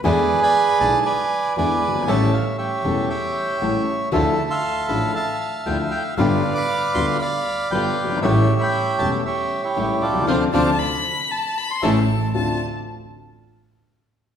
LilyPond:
<<
  \new Staff \with { instrumentName = "Violin" } { \time 4/4 \key d \dorian \tempo 4 = 117 r1 | r1 | r1 | r1 |
r1 | r8 a''8 b''4 a''8 b''16 c'''16 a''4 | a''8 r2. r8 | }
  \new Staff \with { instrumentName = "Bandoneon" } { \time 4/4 \key d \dorian << { d''8. b''8. a''8 gis''4 gis''4 | a''8 f''8 e''4 g''4. r8 | e''8. c'''8. b''8 a''8 a''8 g''8 g''8 | f''8. d'''8. c'''8 b''4 g''4 |
e''8. b''8. a''16 g''16 e''8. cis''8. d''8 | <c'' d'' f''>8 <c'' d'' f''>8 r2 <a' cis'' e''>8 r8 | r1 | } \\ { <gis' b'>8. <d'' gis''>4~ <d'' gis''>16 <b' d''>4 <b' d''>4 | <cis'' e''>4 <g' cis''>4 <cis'' e''>2 | a'8. <e'' f''>4~ <e'' f''>16 <e'' f''>2 | <b' d''>8. <f'' b''>4~ <f'' b''>16 <d'' f''>4 <b' d''>4 |
<g' cis''>8. <e'' g''>4~ <e'' g''>16 <g' cis''>8. <e' g'>8. <f' a'>8 | r1 | r1 | } >> }
  \new Staff \with { instrumentName = "String section" } { \time 4/4 \key d \dorian <d' e' gis'>8 r4 <d' e' gis'>8 r4 <d' e' gis'>8 r8 | <cis' g' a'>8 r4 <cis' g' a'>8 r4 <cis' g' a'>8 r8 | <d' e' f'>8 r4 <d' e' f'>8 r4 <d' e' f'>8 r8 | <b f' g'>8 r4 <b f' g'>8 r4 <b f' g'>8 r8 |
<a cis' g'>8 r4 <a cis' g'>8 r4 <a cis' g'>8 r8 | <c' d' f'>8 <c' d' f'>8 r2 <a cis' e'>8 r8 | <c' d' f'>8 r2. r8 | }
  \new Staff \with { instrumentName = "Upright piano" } { \clef bass \time 4/4 \key d \dorian <e, d e gis b e'>8 r4 <b,, b, d gis b e'>8 r4 <e, d e gis b e'>8 r32 fis,,32 g,,32 gis,,32 | <a,, a, cis g a e'>8 r4 <e,, e, cis g a e'>8 r4 <a,, a, cis g a e'>8 r8 | <d, d f a e'>8 r4 <a,, a, d f a e'>8 r4 <d, d f a e'>8 r8 | <g,, g, d g b f'>8 r4 <d, d g b f'>8 r4 <g,, g, d g b f'>8 r32 fis,,32 g,,32 gis,,32 |
<a,, a, cis g a e'>8 r4 <e,, e, cis g a e'>8 r4 <a,, a, cis g a e'>8 r32 b,,32 c,32 cis,32 | <c d f>8 <c d f>8 r2 <a, cis e>8 r8 | <d, c' d' f'>8 r2. r8 | }
  \new Staff \with { instrumentName = "Double bass" } { \clef bass \time 4/4 \key d \dorian e,8 r4 b,,8 r4 e,8 g,,8 | a,,8 r4 e,,8 r4 a,,8 r8 | d,8 r4 a,,8 r4 d,8 r8 | g,,8 r4 d,8 r4 g,,8 g,,8 |
a,,8 r4 e,,8 r4 a,,8 c,8 | d,8 d,8 r2 a,,8 r8 | d,8 r2. r8 | }
>>